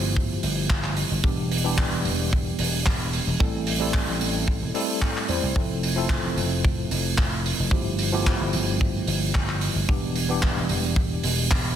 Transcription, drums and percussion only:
0.17 kick
0.43 open hi-hat
0.70 kick, clap
0.84 clap
0.97 open hi-hat
1.24 kick
1.51 open hi-hat
1.78 kick, clap
2.05 open hi-hat
2.33 kick
2.59 open hi-hat
2.86 kick, clap
3.13 open hi-hat
3.40 kick
3.67 open hi-hat
3.94 kick, clap
4.21 open hi-hat
4.48 kick
4.75 open hi-hat
5.02 kick, clap
5.17 clap
5.29 open hi-hat
5.56 kick
5.83 open hi-hat
6.09 kick, clap
6.38 open hi-hat
6.65 kick
6.91 open hi-hat
7.18 kick, clap
7.46 open hi-hat
7.71 kick
7.99 open hi-hat
8.26 kick, clap
8.53 open hi-hat
8.81 kick
9.07 open hi-hat
9.35 kick, clap
9.49 clap
9.61 open hi-hat
9.89 kick
10.15 open hi-hat
10.43 kick, clap
10.69 open hi-hat
10.96 kick
11.23 open hi-hat
11.51 kick, clap

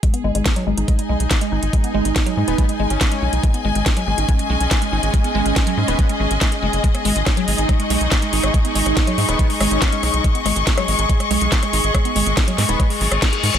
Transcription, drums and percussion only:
0.03 kick, closed hi-hat
0.14 closed hi-hat
0.35 closed hi-hat
0.46 kick, snare, closed hi-hat
0.56 closed hi-hat
0.78 closed hi-hat
0.88 kick, closed hi-hat
0.99 closed hi-hat
1.20 closed hi-hat
1.31 kick, snare, closed hi-hat
1.41 closed hi-hat
1.63 closed hi-hat
1.73 kick, closed hi-hat
1.84 closed hi-hat
2.05 closed hi-hat
2.16 kick, snare, closed hi-hat
2.26 closed hi-hat
2.48 closed hi-hat
2.58 kick, closed hi-hat
2.69 closed hi-hat
2.90 closed hi-hat
3.01 kick, snare, closed hi-hat
3.12 closed hi-hat
3.33 closed hi-hat
3.43 kick, closed hi-hat
3.54 closed hi-hat
3.75 closed hi-hat
3.86 kick, snare, closed hi-hat
3.97 closed hi-hat
4.18 closed hi-hat
4.29 kick, closed hi-hat
4.39 closed hi-hat
4.61 closed hi-hat
4.71 kick, snare, closed hi-hat
4.82 closed hi-hat
5.03 closed hi-hat
5.14 kick, closed hi-hat
5.24 closed hi-hat
5.46 closed hi-hat
5.56 kick, snare, closed hi-hat
5.67 closed hi-hat
5.88 closed hi-hat
5.99 kick, closed hi-hat
6.09 closed hi-hat
6.31 closed hi-hat
6.41 kick, snare, closed hi-hat
6.52 closed hi-hat
6.73 closed hi-hat
6.84 kick, closed hi-hat
6.95 cross-stick, closed hi-hat
7.05 open hi-hat
7.16 closed hi-hat
7.26 kick, cross-stick, snare, closed hi-hat
7.37 closed hi-hat
7.48 open hi-hat
7.58 closed hi-hat
7.69 kick, cross-stick, closed hi-hat
7.80 closed hi-hat
7.90 open hi-hat
8.01 closed hi-hat
8.12 kick, cross-stick, snare, closed hi-hat
8.22 closed hi-hat
8.33 open hi-hat
8.44 cross-stick, closed hi-hat
8.54 kick, closed hi-hat
8.65 closed hi-hat
8.75 open hi-hat
8.86 cross-stick, closed hi-hat
8.97 kick, snare, closed hi-hat
9.07 closed hi-hat
9.18 open hi-hat
9.29 cross-stick, closed hi-hat
9.39 kick, closed hi-hat
9.50 open hi-hat
9.61 cross-stick, open hi-hat
9.71 closed hi-hat
9.82 kick, snare, closed hi-hat
9.92 closed hi-hat
10.03 cross-stick, open hi-hat
10.14 closed hi-hat
10.24 kick, closed hi-hat
10.35 closed hi-hat
10.46 cross-stick, open hi-hat
10.56 closed hi-hat
10.67 kick, snare, closed hi-hat
10.78 cross-stick, closed hi-hat
10.88 open hi-hat
10.99 closed hi-hat
11.09 kick, closed hi-hat
11.20 cross-stick, closed hi-hat
11.31 open hi-hat
11.41 closed hi-hat
11.52 kick, snare, closed hi-hat
11.63 cross-stick, closed hi-hat
11.73 open hi-hat
11.84 closed hi-hat
11.95 kick, cross-stick, closed hi-hat
12.05 closed hi-hat
12.16 open hi-hat
12.26 closed hi-hat
12.37 kick, cross-stick, snare, closed hi-hat
12.48 closed hi-hat
12.58 snare, open hi-hat
12.69 closed hi-hat
12.80 kick, cross-stick, closed hi-hat
12.90 open hi-hat
13.01 open hi-hat
13.12 cross-stick, closed hi-hat
13.22 kick, snare, closed hi-hat
13.33 closed hi-hat
13.43 open hi-hat
13.54 cross-stick, closed hi-hat

